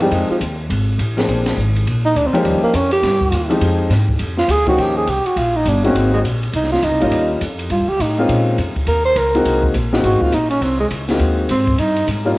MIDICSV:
0, 0, Header, 1, 6, 480
1, 0, Start_track
1, 0, Tempo, 291687
1, 188, Time_signature, 4, 2, 24, 8
1, 20373, End_track
2, 0, Start_track
2, 0, Title_t, "Tenor saxophone"
2, 0, Program_c, 0, 66
2, 36, Note_on_c, 0, 55, 81
2, 222, Note_on_c, 0, 56, 70
2, 247, Note_off_c, 0, 55, 0
2, 492, Note_off_c, 0, 56, 0
2, 502, Note_on_c, 0, 53, 77
2, 607, Note_off_c, 0, 53, 0
2, 3375, Note_on_c, 0, 63, 89
2, 3562, Note_on_c, 0, 62, 92
2, 3587, Note_off_c, 0, 63, 0
2, 3738, Note_on_c, 0, 60, 72
2, 3763, Note_off_c, 0, 62, 0
2, 3905, Note_on_c, 0, 56, 77
2, 3929, Note_off_c, 0, 60, 0
2, 4056, Note_on_c, 0, 55, 71
2, 4081, Note_off_c, 0, 56, 0
2, 4325, Note_off_c, 0, 55, 0
2, 4335, Note_on_c, 0, 58, 84
2, 4534, Note_on_c, 0, 61, 80
2, 4559, Note_off_c, 0, 58, 0
2, 4805, Note_off_c, 0, 61, 0
2, 4815, Note_on_c, 0, 67, 94
2, 5888, Note_off_c, 0, 67, 0
2, 7217, Note_on_c, 0, 65, 94
2, 7420, Note_on_c, 0, 68, 105
2, 7445, Note_off_c, 0, 65, 0
2, 7698, Note_off_c, 0, 68, 0
2, 7708, Note_on_c, 0, 66, 96
2, 7910, Note_on_c, 0, 67, 82
2, 7935, Note_off_c, 0, 66, 0
2, 8172, Note_off_c, 0, 67, 0
2, 8182, Note_on_c, 0, 68, 83
2, 8379, Note_on_c, 0, 67, 82
2, 8404, Note_off_c, 0, 68, 0
2, 8651, Note_on_c, 0, 66, 86
2, 8676, Note_off_c, 0, 67, 0
2, 8859, Note_on_c, 0, 65, 81
2, 8884, Note_off_c, 0, 66, 0
2, 9152, Note_on_c, 0, 63, 90
2, 9177, Note_off_c, 0, 65, 0
2, 9347, Note_on_c, 0, 62, 78
2, 9371, Note_off_c, 0, 63, 0
2, 9623, Note_off_c, 0, 62, 0
2, 9633, Note_on_c, 0, 61, 80
2, 9829, Note_on_c, 0, 60, 70
2, 9854, Note_off_c, 0, 61, 0
2, 10085, Note_off_c, 0, 60, 0
2, 10095, Note_on_c, 0, 56, 81
2, 10203, Note_off_c, 0, 56, 0
2, 10790, Note_on_c, 0, 63, 73
2, 11050, Note_off_c, 0, 63, 0
2, 11061, Note_on_c, 0, 65, 94
2, 11251, Note_on_c, 0, 63, 81
2, 11276, Note_off_c, 0, 65, 0
2, 12021, Note_off_c, 0, 63, 0
2, 12694, Note_on_c, 0, 65, 72
2, 12984, Note_on_c, 0, 67, 101
2, 13009, Note_off_c, 0, 65, 0
2, 13186, Note_on_c, 0, 63, 65
2, 13210, Note_off_c, 0, 67, 0
2, 13948, Note_off_c, 0, 63, 0
2, 14612, Note_on_c, 0, 70, 86
2, 14880, Note_off_c, 0, 70, 0
2, 14895, Note_on_c, 0, 72, 100
2, 15103, Note_on_c, 0, 70, 85
2, 15128, Note_off_c, 0, 72, 0
2, 15866, Note_off_c, 0, 70, 0
2, 16536, Note_on_c, 0, 66, 81
2, 16817, Note_on_c, 0, 65, 88
2, 16842, Note_off_c, 0, 66, 0
2, 17010, Note_on_c, 0, 63, 78
2, 17035, Note_off_c, 0, 65, 0
2, 17269, Note_off_c, 0, 63, 0
2, 17279, Note_on_c, 0, 61, 79
2, 17484, Note_on_c, 0, 60, 72
2, 17509, Note_off_c, 0, 61, 0
2, 17763, Note_off_c, 0, 60, 0
2, 17773, Note_on_c, 0, 56, 78
2, 17880, Note_off_c, 0, 56, 0
2, 18936, Note_on_c, 0, 60, 80
2, 19408, Note_on_c, 0, 63, 88
2, 19433, Note_off_c, 0, 60, 0
2, 19878, Note_off_c, 0, 63, 0
2, 20373, End_track
3, 0, Start_track
3, 0, Title_t, "Upright piano"
3, 0, Program_c, 1, 0
3, 9, Note_on_c, 1, 53, 69
3, 18, Note_on_c, 1, 56, 71
3, 23, Note_on_c, 1, 60, 62
3, 30, Note_on_c, 1, 63, 66
3, 31, Note_on_c, 1, 67, 75
3, 633, Note_off_c, 1, 53, 0
3, 638, Note_off_c, 1, 56, 0
3, 640, Note_off_c, 1, 60, 0
3, 644, Note_off_c, 1, 63, 0
3, 644, Note_off_c, 1, 67, 0
3, 1921, Note_on_c, 1, 53, 61
3, 1925, Note_on_c, 1, 58, 52
3, 1928, Note_on_c, 1, 60, 55
3, 1937, Note_on_c, 1, 62, 52
3, 1944, Note_on_c, 1, 68, 68
3, 2550, Note_off_c, 1, 53, 0
3, 2552, Note_off_c, 1, 58, 0
3, 2553, Note_off_c, 1, 60, 0
3, 2557, Note_off_c, 1, 62, 0
3, 2561, Note_off_c, 1, 68, 0
3, 3836, Note_on_c, 1, 53, 87
3, 3840, Note_on_c, 1, 58, 75
3, 3850, Note_on_c, 1, 61, 71
3, 3854, Note_on_c, 1, 63, 74
3, 3855, Note_on_c, 1, 67, 91
3, 4468, Note_off_c, 1, 53, 0
3, 4469, Note_off_c, 1, 58, 0
3, 4474, Note_off_c, 1, 61, 0
3, 4476, Note_off_c, 1, 63, 0
3, 4477, Note_off_c, 1, 67, 0
3, 5754, Note_on_c, 1, 53, 80
3, 5758, Note_on_c, 1, 56, 75
3, 5761, Note_on_c, 1, 60, 68
3, 5769, Note_on_c, 1, 63, 72
3, 5771, Note_on_c, 1, 67, 80
3, 6387, Note_off_c, 1, 53, 0
3, 6389, Note_off_c, 1, 56, 0
3, 6390, Note_off_c, 1, 60, 0
3, 6394, Note_off_c, 1, 63, 0
3, 6395, Note_off_c, 1, 67, 0
3, 7679, Note_on_c, 1, 53, 67
3, 7681, Note_on_c, 1, 58, 60
3, 7686, Note_on_c, 1, 61, 61
3, 7692, Note_on_c, 1, 63, 61
3, 7702, Note_on_c, 1, 67, 72
3, 8310, Note_off_c, 1, 53, 0
3, 8311, Note_off_c, 1, 58, 0
3, 8314, Note_off_c, 1, 61, 0
3, 8316, Note_off_c, 1, 63, 0
3, 8322, Note_off_c, 1, 67, 0
3, 9595, Note_on_c, 1, 56, 67
3, 9609, Note_on_c, 1, 58, 64
3, 9612, Note_on_c, 1, 63, 65
3, 9613, Note_on_c, 1, 60, 65
3, 9623, Note_on_c, 1, 66, 82
3, 10229, Note_off_c, 1, 56, 0
3, 10236, Note_off_c, 1, 58, 0
3, 10237, Note_off_c, 1, 63, 0
3, 10238, Note_off_c, 1, 60, 0
3, 10243, Note_off_c, 1, 66, 0
3, 11527, Note_on_c, 1, 55, 71
3, 11539, Note_on_c, 1, 58, 62
3, 11542, Note_on_c, 1, 61, 65
3, 11544, Note_on_c, 1, 63, 62
3, 11552, Note_on_c, 1, 65, 72
3, 12155, Note_off_c, 1, 55, 0
3, 12161, Note_off_c, 1, 58, 0
3, 12162, Note_off_c, 1, 61, 0
3, 12163, Note_off_c, 1, 63, 0
3, 12168, Note_off_c, 1, 65, 0
3, 13461, Note_on_c, 1, 56, 78
3, 13468, Note_on_c, 1, 58, 67
3, 13478, Note_on_c, 1, 60, 69
3, 13480, Note_on_c, 1, 61, 66
3, 13490, Note_on_c, 1, 65, 84
3, 14082, Note_off_c, 1, 56, 0
3, 14085, Note_off_c, 1, 58, 0
3, 14090, Note_off_c, 1, 60, 0
3, 14091, Note_off_c, 1, 61, 0
3, 14097, Note_off_c, 1, 65, 0
3, 15373, Note_on_c, 1, 56, 61
3, 15380, Note_on_c, 1, 58, 56
3, 15389, Note_on_c, 1, 63, 60
3, 15391, Note_on_c, 1, 60, 60
3, 15397, Note_on_c, 1, 66, 76
3, 15997, Note_off_c, 1, 56, 0
3, 16001, Note_off_c, 1, 58, 0
3, 16005, Note_off_c, 1, 63, 0
3, 16006, Note_off_c, 1, 60, 0
3, 16009, Note_off_c, 1, 66, 0
3, 16334, Note_on_c, 1, 56, 70
3, 16338, Note_on_c, 1, 58, 60
3, 16341, Note_on_c, 1, 60, 60
3, 16345, Note_on_c, 1, 63, 64
3, 16352, Note_on_c, 1, 66, 75
3, 16957, Note_off_c, 1, 56, 0
3, 16959, Note_off_c, 1, 58, 0
3, 16961, Note_off_c, 1, 60, 0
3, 16963, Note_off_c, 1, 63, 0
3, 16966, Note_off_c, 1, 66, 0
3, 18261, Note_on_c, 1, 56, 65
3, 18266, Note_on_c, 1, 60, 55
3, 18269, Note_on_c, 1, 58, 58
3, 18276, Note_on_c, 1, 63, 59
3, 18282, Note_on_c, 1, 66, 68
3, 18879, Note_off_c, 1, 56, 0
3, 18882, Note_off_c, 1, 60, 0
3, 18883, Note_off_c, 1, 58, 0
3, 18887, Note_off_c, 1, 63, 0
3, 18890, Note_off_c, 1, 66, 0
3, 20159, Note_on_c, 1, 55, 72
3, 20164, Note_on_c, 1, 58, 67
3, 20167, Note_on_c, 1, 61, 65
3, 20172, Note_on_c, 1, 63, 65
3, 20177, Note_on_c, 1, 65, 76
3, 20373, Note_off_c, 1, 55, 0
3, 20373, Note_off_c, 1, 58, 0
3, 20373, Note_off_c, 1, 61, 0
3, 20373, Note_off_c, 1, 63, 0
3, 20373, Note_off_c, 1, 65, 0
3, 20373, End_track
4, 0, Start_track
4, 0, Title_t, "Upright bass"
4, 0, Program_c, 2, 32
4, 0, Note_on_c, 2, 43, 79
4, 167, Note_off_c, 2, 43, 0
4, 177, Note_on_c, 2, 41, 78
4, 459, Note_off_c, 2, 41, 0
4, 667, Note_on_c, 2, 39, 84
4, 1133, Note_off_c, 2, 39, 0
4, 1142, Note_on_c, 2, 32, 86
4, 1611, Note_off_c, 2, 32, 0
4, 1619, Note_on_c, 2, 33, 82
4, 2090, Note_off_c, 2, 33, 0
4, 2100, Note_on_c, 2, 34, 79
4, 2570, Note_off_c, 2, 34, 0
4, 2582, Note_on_c, 2, 32, 80
4, 3051, Note_off_c, 2, 32, 0
4, 3066, Note_on_c, 2, 34, 89
4, 3533, Note_off_c, 2, 34, 0
4, 3547, Note_on_c, 2, 38, 84
4, 3826, Note_off_c, 2, 38, 0
4, 4018, Note_on_c, 2, 39, 84
4, 4301, Note_off_c, 2, 39, 0
4, 4502, Note_on_c, 2, 41, 88
4, 4971, Note_off_c, 2, 41, 0
4, 4981, Note_on_c, 2, 43, 84
4, 5451, Note_off_c, 2, 43, 0
4, 5458, Note_on_c, 2, 39, 86
4, 5930, Note_off_c, 2, 39, 0
4, 5937, Note_on_c, 2, 41, 83
4, 6402, Note_off_c, 2, 41, 0
4, 6412, Note_on_c, 2, 44, 88
4, 6886, Note_off_c, 2, 44, 0
4, 6901, Note_on_c, 2, 41, 82
4, 7362, Note_off_c, 2, 41, 0
4, 7372, Note_on_c, 2, 38, 88
4, 7847, Note_off_c, 2, 38, 0
4, 7864, Note_on_c, 2, 39, 74
4, 8333, Note_off_c, 2, 39, 0
4, 8343, Note_on_c, 2, 36, 75
4, 8624, Note_off_c, 2, 36, 0
4, 8823, Note_on_c, 2, 34, 77
4, 9293, Note_off_c, 2, 34, 0
4, 9301, Note_on_c, 2, 31, 84
4, 9772, Note_off_c, 2, 31, 0
4, 9785, Note_on_c, 2, 32, 74
4, 10255, Note_off_c, 2, 32, 0
4, 10272, Note_on_c, 2, 34, 78
4, 10739, Note_off_c, 2, 34, 0
4, 10750, Note_on_c, 2, 36, 76
4, 11218, Note_off_c, 2, 36, 0
4, 11230, Note_on_c, 2, 37, 84
4, 11376, Note_off_c, 2, 37, 0
4, 11376, Note_on_c, 2, 36, 57
4, 11530, Note_off_c, 2, 36, 0
4, 11540, Note_on_c, 2, 32, 64
4, 11695, Note_off_c, 2, 32, 0
4, 11707, Note_on_c, 2, 39, 75
4, 12176, Note_off_c, 2, 39, 0
4, 12191, Note_on_c, 2, 41, 88
4, 12658, Note_off_c, 2, 41, 0
4, 12668, Note_on_c, 2, 43, 87
4, 12820, Note_on_c, 2, 39, 52
4, 12844, Note_off_c, 2, 43, 0
4, 12957, Note_off_c, 2, 39, 0
4, 12967, Note_on_c, 2, 37, 63
4, 13128, Note_off_c, 2, 37, 0
4, 13152, Note_on_c, 2, 45, 81
4, 13619, Note_off_c, 2, 45, 0
4, 13634, Note_on_c, 2, 46, 78
4, 14099, Note_off_c, 2, 46, 0
4, 14116, Note_on_c, 2, 41, 85
4, 14392, Note_off_c, 2, 41, 0
4, 14590, Note_on_c, 2, 39, 79
4, 15057, Note_off_c, 2, 39, 0
4, 15068, Note_on_c, 2, 37, 81
4, 15536, Note_off_c, 2, 37, 0
4, 15553, Note_on_c, 2, 36, 76
4, 16018, Note_off_c, 2, 36, 0
4, 16026, Note_on_c, 2, 34, 84
4, 16494, Note_off_c, 2, 34, 0
4, 16510, Note_on_c, 2, 32, 80
4, 16788, Note_off_c, 2, 32, 0
4, 16985, Note_on_c, 2, 34, 80
4, 17453, Note_off_c, 2, 34, 0
4, 17461, Note_on_c, 2, 36, 79
4, 17931, Note_off_c, 2, 36, 0
4, 17948, Note_on_c, 2, 37, 85
4, 18414, Note_off_c, 2, 37, 0
4, 18423, Note_on_c, 2, 39, 83
4, 18891, Note_off_c, 2, 39, 0
4, 18906, Note_on_c, 2, 44, 88
4, 19373, Note_off_c, 2, 44, 0
4, 19387, Note_on_c, 2, 43, 77
4, 19853, Note_off_c, 2, 43, 0
4, 19868, Note_on_c, 2, 44, 92
4, 20333, Note_off_c, 2, 44, 0
4, 20373, End_track
5, 0, Start_track
5, 0, Title_t, "Muted upright bass strokes"
5, 489, Note_on_c, 9, 29, 38
5, 653, Note_off_c, 9, 29, 0
5, 3837, Note_on_c, 9, 29, 39
5, 4002, Note_off_c, 9, 29, 0
5, 4310, Note_on_c, 9, 29, 38
5, 4474, Note_off_c, 9, 29, 0
5, 14411, Note_on_c, 9, 29, 42
5, 14576, Note_off_c, 9, 29, 0
5, 20373, End_track
6, 0, Start_track
6, 0, Title_t, "Drums"
6, 5, Note_on_c, 9, 51, 43
6, 170, Note_off_c, 9, 51, 0
6, 187, Note_on_c, 9, 51, 62
6, 188, Note_on_c, 9, 36, 22
6, 352, Note_off_c, 9, 36, 0
6, 352, Note_off_c, 9, 51, 0
6, 669, Note_on_c, 9, 36, 17
6, 672, Note_on_c, 9, 44, 53
6, 672, Note_on_c, 9, 51, 61
6, 834, Note_off_c, 9, 36, 0
6, 836, Note_off_c, 9, 44, 0
6, 836, Note_off_c, 9, 51, 0
6, 1149, Note_on_c, 9, 36, 19
6, 1155, Note_on_c, 9, 51, 66
6, 1314, Note_off_c, 9, 36, 0
6, 1320, Note_off_c, 9, 51, 0
6, 1627, Note_on_c, 9, 36, 18
6, 1628, Note_on_c, 9, 44, 49
6, 1628, Note_on_c, 9, 51, 67
6, 1792, Note_off_c, 9, 36, 0
6, 1793, Note_off_c, 9, 44, 0
6, 1793, Note_off_c, 9, 51, 0
6, 1937, Note_on_c, 9, 51, 39
6, 1938, Note_on_c, 9, 38, 58
6, 2101, Note_off_c, 9, 51, 0
6, 2103, Note_off_c, 9, 38, 0
6, 2109, Note_on_c, 9, 36, 27
6, 2116, Note_on_c, 9, 51, 65
6, 2273, Note_off_c, 9, 36, 0
6, 2281, Note_off_c, 9, 51, 0
6, 2404, Note_on_c, 9, 51, 70
6, 2405, Note_on_c, 9, 38, 55
6, 2568, Note_off_c, 9, 51, 0
6, 2570, Note_off_c, 9, 38, 0
6, 2587, Note_on_c, 9, 36, 24
6, 2595, Note_on_c, 9, 44, 54
6, 2752, Note_off_c, 9, 36, 0
6, 2759, Note_off_c, 9, 44, 0
6, 2899, Note_on_c, 9, 51, 46
6, 3064, Note_off_c, 9, 51, 0
6, 3068, Note_on_c, 9, 36, 19
6, 3079, Note_on_c, 9, 51, 63
6, 3233, Note_off_c, 9, 36, 0
6, 3244, Note_off_c, 9, 51, 0
6, 3550, Note_on_c, 9, 36, 20
6, 3558, Note_on_c, 9, 44, 51
6, 3558, Note_on_c, 9, 51, 62
6, 3714, Note_off_c, 9, 36, 0
6, 3722, Note_off_c, 9, 44, 0
6, 3722, Note_off_c, 9, 51, 0
6, 3859, Note_on_c, 9, 51, 47
6, 4023, Note_off_c, 9, 51, 0
6, 4026, Note_on_c, 9, 36, 27
6, 4028, Note_on_c, 9, 51, 65
6, 4190, Note_off_c, 9, 36, 0
6, 4192, Note_off_c, 9, 51, 0
6, 4505, Note_on_c, 9, 36, 21
6, 4506, Note_on_c, 9, 44, 59
6, 4506, Note_on_c, 9, 51, 63
6, 4670, Note_off_c, 9, 36, 0
6, 4671, Note_off_c, 9, 44, 0
6, 4671, Note_off_c, 9, 51, 0
6, 4792, Note_on_c, 9, 51, 49
6, 4957, Note_off_c, 9, 51, 0
6, 4984, Note_on_c, 9, 36, 20
6, 4991, Note_on_c, 9, 51, 63
6, 4992, Note_on_c, 9, 38, 40
6, 5149, Note_off_c, 9, 36, 0
6, 5155, Note_off_c, 9, 51, 0
6, 5157, Note_off_c, 9, 38, 0
6, 5280, Note_on_c, 9, 36, 55
6, 5445, Note_off_c, 9, 36, 0
6, 5462, Note_on_c, 9, 36, 22
6, 5463, Note_on_c, 9, 44, 62
6, 5463, Note_on_c, 9, 51, 72
6, 5627, Note_off_c, 9, 36, 0
6, 5628, Note_off_c, 9, 44, 0
6, 5628, Note_off_c, 9, 51, 0
6, 5766, Note_on_c, 9, 51, 44
6, 5931, Note_off_c, 9, 51, 0
6, 5945, Note_on_c, 9, 36, 19
6, 5945, Note_on_c, 9, 51, 66
6, 6109, Note_off_c, 9, 36, 0
6, 6110, Note_off_c, 9, 51, 0
6, 6423, Note_on_c, 9, 36, 18
6, 6426, Note_on_c, 9, 44, 52
6, 6426, Note_on_c, 9, 51, 64
6, 6427, Note_on_c, 9, 38, 32
6, 6588, Note_off_c, 9, 36, 0
6, 6590, Note_off_c, 9, 44, 0
6, 6590, Note_off_c, 9, 51, 0
6, 6592, Note_off_c, 9, 38, 0
6, 6725, Note_on_c, 9, 36, 58
6, 6889, Note_off_c, 9, 36, 0
6, 6896, Note_on_c, 9, 51, 69
6, 6904, Note_on_c, 9, 36, 23
6, 7060, Note_off_c, 9, 51, 0
6, 7069, Note_off_c, 9, 36, 0
6, 7198, Note_on_c, 9, 38, 41
6, 7363, Note_off_c, 9, 38, 0
6, 7382, Note_on_c, 9, 44, 67
6, 7382, Note_on_c, 9, 51, 71
6, 7383, Note_on_c, 9, 36, 20
6, 7546, Note_off_c, 9, 44, 0
6, 7546, Note_off_c, 9, 51, 0
6, 7548, Note_off_c, 9, 36, 0
6, 7677, Note_on_c, 9, 51, 44
6, 7682, Note_on_c, 9, 36, 64
6, 7841, Note_off_c, 9, 51, 0
6, 7846, Note_off_c, 9, 36, 0
6, 7867, Note_on_c, 9, 36, 27
6, 7868, Note_on_c, 9, 51, 58
6, 8031, Note_off_c, 9, 36, 0
6, 8033, Note_off_c, 9, 51, 0
6, 8347, Note_on_c, 9, 44, 44
6, 8347, Note_on_c, 9, 51, 62
6, 8348, Note_on_c, 9, 36, 21
6, 8511, Note_off_c, 9, 44, 0
6, 8511, Note_off_c, 9, 51, 0
6, 8513, Note_off_c, 9, 36, 0
6, 8653, Note_on_c, 9, 51, 45
6, 8817, Note_off_c, 9, 51, 0
6, 8829, Note_on_c, 9, 51, 64
6, 8830, Note_on_c, 9, 36, 24
6, 8994, Note_off_c, 9, 51, 0
6, 8995, Note_off_c, 9, 36, 0
6, 9307, Note_on_c, 9, 44, 61
6, 9307, Note_on_c, 9, 51, 64
6, 9309, Note_on_c, 9, 36, 18
6, 9472, Note_off_c, 9, 44, 0
6, 9472, Note_off_c, 9, 51, 0
6, 9474, Note_off_c, 9, 36, 0
6, 9615, Note_on_c, 9, 51, 40
6, 9780, Note_off_c, 9, 51, 0
6, 9795, Note_on_c, 9, 36, 22
6, 9799, Note_on_c, 9, 51, 59
6, 9960, Note_off_c, 9, 36, 0
6, 9963, Note_off_c, 9, 51, 0
6, 10277, Note_on_c, 9, 36, 23
6, 10280, Note_on_c, 9, 44, 51
6, 10280, Note_on_c, 9, 51, 60
6, 10441, Note_off_c, 9, 36, 0
6, 10444, Note_off_c, 9, 44, 0
6, 10444, Note_off_c, 9, 51, 0
6, 10577, Note_on_c, 9, 51, 45
6, 10742, Note_off_c, 9, 51, 0
6, 10750, Note_on_c, 9, 51, 63
6, 10755, Note_on_c, 9, 36, 21
6, 10914, Note_off_c, 9, 51, 0
6, 10919, Note_off_c, 9, 36, 0
6, 10922, Note_on_c, 9, 38, 26
6, 11086, Note_off_c, 9, 38, 0
6, 11086, Note_on_c, 9, 38, 39
6, 11231, Note_on_c, 9, 44, 49
6, 11231, Note_on_c, 9, 51, 70
6, 11235, Note_on_c, 9, 36, 25
6, 11250, Note_off_c, 9, 38, 0
6, 11396, Note_off_c, 9, 44, 0
6, 11396, Note_off_c, 9, 51, 0
6, 11400, Note_off_c, 9, 36, 0
6, 11542, Note_on_c, 9, 51, 41
6, 11706, Note_off_c, 9, 51, 0
6, 11708, Note_on_c, 9, 51, 62
6, 11717, Note_on_c, 9, 36, 21
6, 11873, Note_off_c, 9, 51, 0
6, 11882, Note_off_c, 9, 36, 0
6, 12194, Note_on_c, 9, 44, 55
6, 12194, Note_on_c, 9, 51, 65
6, 12199, Note_on_c, 9, 36, 18
6, 12359, Note_off_c, 9, 44, 0
6, 12359, Note_off_c, 9, 51, 0
6, 12363, Note_off_c, 9, 36, 0
6, 12490, Note_on_c, 9, 51, 49
6, 12654, Note_off_c, 9, 51, 0
6, 12667, Note_on_c, 9, 51, 59
6, 12676, Note_on_c, 9, 36, 22
6, 12832, Note_off_c, 9, 51, 0
6, 12841, Note_off_c, 9, 36, 0
6, 13162, Note_on_c, 9, 36, 25
6, 13166, Note_on_c, 9, 44, 52
6, 13166, Note_on_c, 9, 51, 72
6, 13326, Note_off_c, 9, 36, 0
6, 13331, Note_off_c, 9, 44, 0
6, 13331, Note_off_c, 9, 51, 0
6, 13641, Note_on_c, 9, 51, 68
6, 13642, Note_on_c, 9, 36, 24
6, 13806, Note_off_c, 9, 51, 0
6, 13807, Note_off_c, 9, 36, 0
6, 14119, Note_on_c, 9, 44, 53
6, 14119, Note_on_c, 9, 51, 59
6, 14121, Note_on_c, 9, 36, 15
6, 14284, Note_off_c, 9, 44, 0
6, 14284, Note_off_c, 9, 51, 0
6, 14285, Note_off_c, 9, 36, 0
6, 14414, Note_on_c, 9, 51, 42
6, 14416, Note_on_c, 9, 36, 56
6, 14579, Note_off_c, 9, 51, 0
6, 14581, Note_off_c, 9, 36, 0
6, 14590, Note_on_c, 9, 51, 62
6, 14598, Note_on_c, 9, 36, 24
6, 14754, Note_off_c, 9, 51, 0
6, 14763, Note_off_c, 9, 36, 0
6, 15073, Note_on_c, 9, 44, 55
6, 15073, Note_on_c, 9, 51, 71
6, 15076, Note_on_c, 9, 36, 19
6, 15237, Note_off_c, 9, 44, 0
6, 15237, Note_off_c, 9, 51, 0
6, 15241, Note_off_c, 9, 36, 0
6, 15377, Note_on_c, 9, 51, 44
6, 15542, Note_off_c, 9, 51, 0
6, 15557, Note_on_c, 9, 36, 27
6, 15557, Note_on_c, 9, 51, 62
6, 15722, Note_off_c, 9, 36, 0
6, 15722, Note_off_c, 9, 51, 0
6, 15854, Note_on_c, 9, 36, 54
6, 16018, Note_off_c, 9, 36, 0
6, 16028, Note_on_c, 9, 44, 50
6, 16028, Note_on_c, 9, 51, 59
6, 16032, Note_on_c, 9, 36, 23
6, 16193, Note_off_c, 9, 44, 0
6, 16193, Note_off_c, 9, 51, 0
6, 16197, Note_off_c, 9, 36, 0
6, 16337, Note_on_c, 9, 38, 57
6, 16502, Note_off_c, 9, 38, 0
6, 16512, Note_on_c, 9, 36, 28
6, 16514, Note_on_c, 9, 51, 60
6, 16677, Note_off_c, 9, 36, 0
6, 16679, Note_off_c, 9, 51, 0
6, 16807, Note_on_c, 9, 36, 66
6, 16971, Note_off_c, 9, 36, 0
6, 16988, Note_on_c, 9, 44, 63
6, 16988, Note_on_c, 9, 51, 63
6, 17152, Note_off_c, 9, 44, 0
6, 17152, Note_off_c, 9, 51, 0
6, 17286, Note_on_c, 9, 51, 44
6, 17451, Note_off_c, 9, 51, 0
6, 17470, Note_on_c, 9, 36, 22
6, 17471, Note_on_c, 9, 51, 61
6, 17634, Note_off_c, 9, 36, 0
6, 17636, Note_off_c, 9, 51, 0
6, 17948, Note_on_c, 9, 44, 47
6, 17948, Note_on_c, 9, 51, 63
6, 17951, Note_on_c, 9, 36, 22
6, 18113, Note_off_c, 9, 44, 0
6, 18113, Note_off_c, 9, 51, 0
6, 18115, Note_off_c, 9, 36, 0
6, 18241, Note_on_c, 9, 51, 46
6, 18243, Note_on_c, 9, 38, 48
6, 18406, Note_off_c, 9, 51, 0
6, 18408, Note_off_c, 9, 38, 0
6, 18421, Note_on_c, 9, 51, 60
6, 18427, Note_on_c, 9, 36, 25
6, 18585, Note_off_c, 9, 51, 0
6, 18592, Note_off_c, 9, 36, 0
6, 18904, Note_on_c, 9, 44, 53
6, 18904, Note_on_c, 9, 51, 71
6, 18911, Note_on_c, 9, 36, 24
6, 19068, Note_off_c, 9, 44, 0
6, 19068, Note_off_c, 9, 51, 0
6, 19076, Note_off_c, 9, 36, 0
6, 19206, Note_on_c, 9, 51, 45
6, 19208, Note_on_c, 9, 36, 61
6, 19370, Note_off_c, 9, 51, 0
6, 19372, Note_off_c, 9, 36, 0
6, 19389, Note_on_c, 9, 51, 67
6, 19391, Note_on_c, 9, 36, 20
6, 19554, Note_off_c, 9, 51, 0
6, 19556, Note_off_c, 9, 36, 0
6, 19686, Note_on_c, 9, 51, 46
6, 19851, Note_off_c, 9, 51, 0
6, 19870, Note_on_c, 9, 36, 17
6, 19872, Note_on_c, 9, 44, 54
6, 19872, Note_on_c, 9, 51, 62
6, 20035, Note_off_c, 9, 36, 0
6, 20037, Note_off_c, 9, 44, 0
6, 20037, Note_off_c, 9, 51, 0
6, 20373, End_track
0, 0, End_of_file